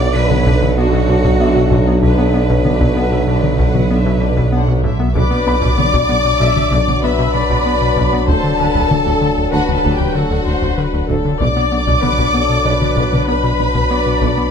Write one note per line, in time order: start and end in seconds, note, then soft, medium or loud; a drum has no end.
0.00 4.91 B1 medium
0.00 5.15 B1 medium
0.00 4.79 F#3 medium
0.00 0.16 F#3 medium
0.00 0.15 B3 medium
0.00 4.79 D4 loud
0.00 0.13 D5 loud
0.00 0.15 F#5 medium
0.15 0.25 B2 loud
0.15 0.30 D3 medium
0.15 0.30 D4 medium
0.15 0.78 B4 loud
0.15 0.30 D5 medium
0.31 0.40 B2 medium
0.31 0.47 F#3 medium
0.31 0.47 B3 medium
0.31 0.47 F#5 medium
0.31 taiko mid medium
0.46 0.56 B2 loud
0.46 0.63 D3 medium
0.46 0.62 D4 medium
0.46 0.62 D5 medium
0.46 taiko medium
0.61 0.72 B2 medium
0.61 0.78 F#3 medium
0.61 0.77 B3 medium
0.61 0.78 F#5 medium
0.61 taiko mid medium
0.77 0.92 D3 medium
0.77 0.87 B3 medium
0.77 0.92 D4 medium
0.77 2.03 F#4 loud
0.77 0.93 D5 medium
0.92 1.03 B2 loud
0.92 1.09 F#3 medium
0.92 1.08 B3 medium
0.92 1.09 F#5 medium
1.08 1.18 B2 medium
1.08 1.25 D3 medium
1.08 1.24 D4 medium
1.08 1.25 D5 medium
1.24 1.34 B2 loud
1.24 1.40 F#3 medium
1.24 1.40 B3 medium
1.24 1.41 F#5 medium
1.24 taiko medium
1.40 1.55 D3 medium
1.40 1.50 B3 medium
1.40 1.55 D4 medium
1.40 1.55 D5 medium
1.40 3.24 E5 medium
1.56 1.65 B2 medium
1.56 1.72 F#3 medium
1.56 1.71 B3 medium
1.56 1.72 F#5 medium
1.71 1.81 B2 medium
1.71 1.87 D3 medium
1.71 1.87 D4 medium
1.71 1.87 D5 medium
1.71 taiko medium
1.87 2.03 F#3 soft
1.87 2.03 B3 soft
1.87 1.97 B3 medium
1.87 2.03 F#5 medium
2.03 2.12 B2 medium
2.03 2.18 D3 medium
2.03 2.17 D4 medium
2.03 4.49 B4 medium
2.03 2.18 D5 medium
2.03 taiko medium
2.18 2.34 F#3 medium
2.18 2.28 B3 medium
2.18 2.34 B3 soft
2.18 2.34 F#5 medium
2.34 2.50 D3 medium
2.34 2.43 B3 medium
2.34 2.50 D4 medium
2.34 2.50 D5 medium
2.50 2.59 B2 loud
2.50 2.66 F#3 soft
2.50 2.65 B3 soft
2.50 2.65 F#5 medium
2.50 taiko medium
2.65 2.80 D3 medium
2.65 2.74 B3 medium
2.65 2.80 D4 medium
2.65 2.95 D5 medium
2.65 taiko mid medium
2.80 2.90 B2 loud
2.80 2.96 F#3 medium
2.80 2.97 B3 soft
2.80 taiko medium
2.96 3.12 D3 medium
2.96 3.06 B3 medium
2.96 3.12 D4 soft
2.96 3.28 E5 medium
2.96 4.80 F#5 soft
3.12 3.21 B2 medium
3.12 3.28 F#3 soft
3.12 3.28 B3 medium
3.27 3.37 B2 loud
3.27 3.42 D3 medium
3.27 3.43 D4 medium
3.27 3.59 D5 medium
3.43 3.53 B2 medium
3.43 3.59 F#3 soft
3.43 3.59 B3 medium
3.43 taiko mid medium
3.59 3.68 B2 loud
3.59 3.75 D3 soft
3.59 3.75 D4 soft
3.59 3.90 F#5 medium
3.59 taiko medium
3.74 3.84 B2 medium
3.74 3.90 F#3 soft
3.74 3.91 B3 soft
3.74 taiko mid medium
3.90 4.05 D3 medium
3.90 4.00 B3 medium
3.90 4.05 D4 medium
3.90 4.22 E5 medium
4.06 4.15 B2 loud
4.06 4.21 F#3 medium
4.06 4.22 B3 soft
4.21 4.31 B2 medium
4.21 4.37 D3 medium
4.21 4.37 D4 soft
4.21 4.53 D5 medium
4.37 4.46 B2 medium
4.37 4.53 F#3 medium
4.37 4.53 B3 soft
4.37 taiko medium
4.52 4.67 D3 soft
4.52 4.62 B3 medium
4.52 4.67 D4 medium
4.52 4.83 F#5 medium
4.68 4.77 B2 medium
4.68 4.84 F#3 soft
4.68 4.84 B3 soft
4.84 4.93 B2 loud
4.84 5.00 D3 soft
4.84 5.00 D4 soft
4.84 5.14 E5 medium
4.84 taiko medium
4.99 5.16 F#3 soft
4.99 5.15 B3 soft
4.99 5.09 B3 medium
5.15 5.22 B1 medium
5.15 8.30 B1 medium
5.15 5.25 B2 loud
5.15 5.22 B2 medium
5.15 11.36 F#3 medium
5.15 11.36 D4 medium
5.15 5.74 B4 medium
5.15 6.99 D5 loud
5.15 6.99 D6 loud
5.15 taiko loud
5.31 5.37 B2 medium
5.31 5.40 B3 medium
5.46 5.53 B1 medium
5.46 5.53 B2 medium
5.46 5.56 B3 medium
5.46 7.31 B5 medium
5.62 5.71 B2 loud
5.62 5.68 B2 medium
5.62 taiko medium
5.78 5.85 B1 medium
5.78 5.84 B2 medium
5.78 5.87 B3 medium
5.78 6.40 D5 medium
5.78 taiko mid medium
5.93 6.00 B2 medium
5.93 6.03 B2 loud
5.93 taiko medium
6.09 6.16 B1 medium
6.09 6.16 B2 medium
6.09 6.19 B3 medium
6.24 6.31 B2 medium
6.24 6.34 B2 medium
6.40 6.47 B1 medium
6.40 6.47 B2 medium
6.40 6.50 B2 loud
6.40 6.71 E5 medium
6.56 6.62 B2 medium
6.56 6.66 B2 medium
6.56 taiko mid medium
6.71 6.78 B1 medium
6.71 6.77 B2 medium
6.71 6.81 B2 loud
6.71 7.03 D5 medium
6.71 taiko medium
6.87 6.93 B2 medium
6.87 6.97 B2 medium
6.87 taiko mid medium
7.02 7.09 B1 medium
7.02 7.10 B1 medium
7.02 7.08 B2 medium
7.02 7.13 B3 medium
7.02 8.25 B4 medium
7.02 7.34 E5 medium
7.02 8.28 B5 loud
7.18 7.24 B2 medium
7.18 7.28 B2 loud
7.34 7.40 B1 medium
7.34 7.41 B1 medium
7.34 7.40 B2 medium
7.34 7.44 B2 medium
7.34 8.26 D5 medium
7.49 7.56 B2 medium
7.49 7.59 B2 medium
7.49 taiko medium
7.66 7.75 B3 medium
7.81 7.87 B2 medium
7.81 7.91 B2 medium
7.96 8.03 B1 medium
7.96 8.03 B2 medium
7.96 8.06 B2 loud
7.96 taiko medium
8.11 8.18 B2 medium
8.11 8.22 B3 medium
8.27 11.42 D1 medium
8.27 8.34 D2 medium
8.27 8.37 D2 medium
8.27 8.34 D2 medium
8.27 8.33 D3 medium
8.27 9.50 A4 medium
8.27 8.58 C5 medium
8.27 9.51 A5 loud
8.27 taiko loud
8.43 8.49 D3 medium
8.43 8.53 D3 medium
8.58 8.65 D2 medium
8.58 8.65 D3 medium
8.58 8.69 D3 medium
8.58 8.90 B4 medium
8.74 8.84 D2 loud
8.74 8.81 D3 medium
8.74 taiko medium
8.90 8.97 D2 medium
8.90 8.96 D3 medium
8.90 9.00 D3 medium
8.90 9.53 A4 medium
8.90 taiko mid medium
9.06 9.15 D2 medium
9.06 9.12 D3 medium
9.06 taiko medium
9.21 9.28 D2 medium
9.21 9.31 D3 medium
9.21 9.28 D3 medium
9.37 9.47 D2 medium
9.37 9.44 D3 medium
9.52 9.62 D2 medium
9.52 9.59 D2 medium
9.52 9.60 D2 medium
9.52 9.59 D3 medium
9.52 9.73 F#4 medium
9.52 10.15 B4 medium
9.52 9.73 F#5 medium
9.52 11.37 A5 medium
9.68 9.78 D2 medium
9.68 9.75 D3 medium
9.68 taiko mid medium
9.74 9.95 A4 medium
9.74 9.94 A5 medium
9.84 9.93 D2 medium
9.84 9.91 D2 medium
9.84 9.90 D3 medium
9.84 taiko medium
9.95 10.15 G4 medium
9.95 10.16 G5 medium
9.99 10.09 D2 medium
9.99 10.06 D3 medium
9.99 taiko mid medium
10.15 10.22 D2 medium
10.15 10.24 D3 medium
10.15 10.22 D3 medium
10.15 11.09 F#4 medium
10.15 10.47 A4 medium
10.15 11.09 F#5 medium
10.30 10.40 D2 loud
10.30 10.37 D3 medium
10.46 10.56 D2 medium
10.46 10.53 D2 medium
10.46 10.53 D3 medium
10.46 10.77 C5 medium
10.62 10.71 D2 medium
10.62 10.69 D3 medium
10.62 taiko medium
10.78 10.87 D3 medium
10.78 11.09 B4 medium
10.93 11.03 D2 medium
10.93 11.00 D3 medium
11.09 11.18 D2 medium
11.09 11.16 D2 medium
11.09 11.15 D3 medium
11.09 11.40 A4 medium
11.09 taiko medium
11.25 11.34 D3 medium
11.25 11.32 D3 medium
11.40 11.46 B1 medium
11.40 14.51 B1 medium
11.40 11.50 B2 medium
11.40 11.47 B2 medium
11.40 14.51 F#3 medium
11.40 14.51 D4 medium
11.40 13.24 D5 medium
11.40 12.03 D5 medium
11.40 13.24 D6 loud
11.40 taiko medium
11.56 11.62 B2 medium
11.56 11.66 B3 medium
11.71 11.78 B1 medium
11.71 11.78 B2 medium
11.71 11.81 B3 medium
11.87 11.93 B2 medium
11.87 11.97 B2 loud
11.87 taiko medium
12.02 12.09 B1 medium
12.02 12.09 B2 medium
12.02 12.12 B3 medium
12.02 12.34 B4 medium
12.02 taiko mid medium
12.18 12.28 B2 medium
12.18 12.25 B2 medium
12.18 taiko medium
12.33 12.40 B1 medium
12.33 12.41 B2 medium
12.33 12.43 B3 medium
12.33 12.65 A4 medium
12.49 12.59 B2 medium
12.49 12.56 B2 medium
12.65 12.71 B1 medium
12.65 12.75 B2 medium
12.65 12.72 B2 medium
12.65 13.90 B4 medium
12.65 14.49 D5 medium
12.81 12.90 B2 medium
12.81 12.88 B2 medium
12.81 taiko mid medium
12.95 13.02 B1 medium
12.95 13.03 B1 medium
12.95 13.06 B2 medium
12.95 13.03 B2 medium
12.95 taiko medium
13.12 13.22 B2 medium
13.12 13.19 B2 medium
13.12 taiko mid medium
13.27 13.34 B1 medium
13.27 13.35 B2 medium
13.27 13.37 B3 medium
13.27 14.51 B4 medium
13.27 14.50 B5 loud
13.44 13.53 B2 medium
13.44 13.50 B2 medium
13.58 13.65 B1 medium
13.58 13.69 B2 medium
13.58 13.66 B2 medium
13.75 13.84 B2 medium
13.75 13.81 B2 medium
13.75 taiko medium
13.90 14.00 B3 medium
13.90 14.51 D5 medium
14.06 14.15 B2 medium
14.06 14.13 B2 medium
14.21 14.27 B1 medium
14.21 14.28 B1 medium
14.21 14.31 B2 medium
14.21 14.28 B2 medium
14.21 taiko medium
14.37 14.44 B2 medium
14.37 14.47 B3 medium